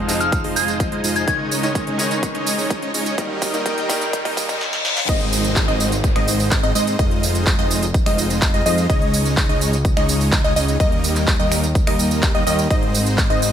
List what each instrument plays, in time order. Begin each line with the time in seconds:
Already playing: analog synth bass F1, grand piano F3 G#3 C4 D#4, supersaw synth G#3 D#4 F4 C5 D#5, analog synth pad D#4 G#4 F5, riser
0.07 grand piano F3 G#3 C4 D#4, open hi-hat, tambourine
0.20 synth bell F6, closed hi-hat, tambourine
0.32 kick, closed hi-hat, tambourine
0.44 analog synth bass F1, supersaw synth G#3 D#4 F4 C5 D#5, open hi-hat
0.56 synth bell G#6, open hi-hat, tambourine
0.68 closed hi-hat, tambourine
0.80 kick, closed hi-hat, tambourine
0.92 analog synth bass F1, supersaw synth G#3 D#4 F4 C5 D#5, closed hi-hat
1.04 analog synth bass F1, supersaw synth G#3 D#4 F4 C5 D#5, open hi-hat, tambourine
1.16 synth bell G#6, closed hi-hat, tambourine
1.27 analog synth bass C#2, grand piano D#3 G#3 C#4 D#4, supersaw synth G#3 C#4 D#4 C#5, analog synth pad C#5 G#5, synth bell G#6, kick, closed hi-hat, tambourine
1.51 open hi-hat, tambourine
1.63 grand piano D#3 G#3 C#4 D#4, closed hi-hat, tambourine
1.75 kick, closed hi-hat, tambourine
1.87 analog synth bass C#2, supersaw synth G#3 C#4 D#4 C#5 D#5, closed hi-hat
1.98 grand piano D#3 G#3 C#4 D#4, open hi-hat, tambourine
2.11 closed hi-hat, tambourine
2.23 kick, closed hi-hat, tambourine
2.35 analog synth bass C#2, supersaw synth G#3 C#4 D#4 C#5 D#5, closed hi-hat
2.47 open hi-hat, tambourine
2.58 open hi-hat, tambourine
2.70 kick, closed hi-hat, tambourine
2.82 analog synth bass C#2, supersaw synth G#3 C#4 D#4 C#5 D#5, closed hi-hat
2.94 analog synth bass C#2, supersaw synth G#3 C#4 D#4 C#5 D#5, open hi-hat, tambourine
3.06 closed hi-hat, tambourine
3.18 analog synth bass D#2, grand piano D#3 G3 A#3 D#4, supersaw synth G3 A#3 D#4 A#4 D#5, analog synth pad A#4 G5, kick, closed hi-hat, tambourine
3.42 kick, open hi-hat, tambourine
3.53 grand piano D#3 G3 A#3 D#4, closed hi-hat, tambourine
3.66 kick, closed hi-hat, tambourine
3.78 analog synth bass D#2, supersaw synth G3 A#3 D#4 A#4 D#5, closed hi-hat
3.88 grand piano D#3 G3 A#3 D#4, kick, open hi-hat, tambourine
4.01 closed hi-hat, tambourine
4.13 kick, closed hi-hat, tambourine, reverse cymbal
4.25 analog synth bass D#2, supersaw synth G3 A#3 D#4 A#4 D#5, kick, open hi-hat
4.37 kick, open hi-hat, tambourine
4.49 kick, closed hi-hat, tambourine
4.61 snare
4.73 snare
4.85 snare
4.97 snare
5.09 analog synth bass G#1, supersaw synth G#3 C4 D#4 C5 D#5, synth pluck D#5, kick, closed hi-hat, crash, tambourine, downlifter
5.21 closed hi-hat
5.33 open hi-hat, tambourine
5.44 closed hi-hat, tambourine
5.56 kick, clap, closed hi-hat, tambourine
5.68 analog synth bass G#1, supersaw synth G#3 C4 D#4 C5 D#5, synth pluck D#5, closed hi-hat
5.80 open hi-hat, tambourine
5.92 closed hi-hat, tambourine
6.04 kick, closed hi-hat, tambourine
6.16 analog synth bass G#1, supersaw synth G#3 C4 D#4 C5 D#5, synth pluck D#5, finger snap, closed hi-hat
6.28 open hi-hat, tambourine
6.40 open hi-hat, tambourine
6.51 finger snap, kick, clap, closed hi-hat, tambourine
6.63 analog synth bass G#1, supersaw synth G#3 C4 D#4 C5 D#5, synth pluck D#5, closed hi-hat
6.75 analog synth bass G#2, supersaw synth G#3 C4 D#4 C5 D#5, synth pluck D#5, open hi-hat, tambourine
6.87 closed hi-hat, tambourine
6.99 analog synth bass F1, supersaw synth G#3 D#4 F4 C5 D#5, synth pluck D#5, kick, closed hi-hat, tambourine
7.11 closed hi-hat
7.23 open hi-hat, tambourine
7.35 closed hi-hat, tambourine
7.47 kick, clap, closed hi-hat, tambourine
7.59 analog synth bass F1, supersaw synth G#3 D#4 F4 C5 D#5, synth pluck D#5, closed hi-hat
7.71 open hi-hat, tambourine
7.83 closed hi-hat, tambourine
7.94 kick, closed hi-hat, tambourine
8.06 analog synth bass F1, supersaw synth G#3 D#4 F4 C5 D#5, synth pluck D#5, finger snap, open hi-hat
8.18 open hi-hat, tambourine
8.30 closed hi-hat, tambourine
8.42 finger snap, kick, clap, closed hi-hat, tambourine
8.54 analog synth bass F1, supersaw synth G#3 D#4 F4 C5 D#5, synth pluck D#5, closed hi-hat
8.66 analog synth bass F2, supersaw synth G#3 D#4 F4 C5 D#5, synth pluck D#5, open hi-hat, tambourine
8.78 closed hi-hat, tambourine
8.90 analog synth bass C#2, supersaw synth G#3 C#4 D#4 C#5 D#5, synth pluck D#5, kick, closed hi-hat, tambourine
9.02 closed hi-hat
9.14 open hi-hat, tambourine
9.25 closed hi-hat, tambourine
9.37 kick, clap, closed hi-hat, tambourine
9.49 analog synth bass C#2, supersaw synth G#3 C#4 D#4 C#5 D#5, synth pluck D#5, closed hi-hat
9.61 open hi-hat, tambourine
9.73 closed hi-hat, tambourine
9.85 kick, closed hi-hat, tambourine
9.97 analog synth bass C#2, supersaw synth G#3 C#4 D#4 C#5 D#5, synth pluck D#5, finger snap, closed hi-hat
10.09 open hi-hat, tambourine
10.21 open hi-hat, tambourine
10.32 finger snap, kick, clap, closed hi-hat, tambourine
10.44 analog synth bass C#2, supersaw synth G#3 C#4 D#4 C#5 D#5, synth pluck D#5, closed hi-hat
10.56 analog synth bass C#2, supersaw synth G#3 C#4 D#4 C#5 D#5, synth pluck D#5, open hi-hat, tambourine
10.68 closed hi-hat, tambourine
10.80 analog synth bass D#2, supersaw synth G3 A#3 D#4 A#4 D#5, synth pluck D#5, kick, closed hi-hat, tambourine
10.92 closed hi-hat
11.04 open hi-hat, tambourine
11.16 clap, closed hi-hat, tambourine
11.28 kick, clap, closed hi-hat, tambourine
11.40 analog synth bass D#2, supersaw synth G3 A#3 D#4 A#4 D#5, synth pluck D#5, closed hi-hat
11.52 finger snap, open hi-hat, tambourine
11.63 closed hi-hat, tambourine
11.75 kick, closed hi-hat, tambourine
11.87 analog synth bass D#2, supersaw synth G3 A#3 D#4 A#4 D#5, synth pluck D#5, finger snap, open hi-hat
11.99 open hi-hat, tambourine
12.11 closed hi-hat, tambourine
12.23 finger snap, kick, clap, closed hi-hat, tambourine
12.35 analog synth bass D#2, supersaw synth G3 A#3 D#4 A#4 D#5, synth pluck D#5, closed hi-hat
12.47 analog synth bass D#2, supersaw synth G3 A#3 D#4 A#4 D#5, synth pluck D#5, open hi-hat, tambourine
12.59 closed hi-hat, tambourine
12.71 analog synth bass G#1, supersaw synth G#3 C4 D#4 D#5, synth pluck D#5, kick, closed hi-hat, tambourine
12.83 closed hi-hat
12.94 open hi-hat, tambourine
13.06 closed hi-hat, tambourine
13.18 kick, clap, closed hi-hat, tambourine
13.30 analog synth bass G#1, supersaw synth G#3 C4 D#4 C5 D#5, synth pluck D#5, closed hi-hat
13.42 open hi-hat, tambourine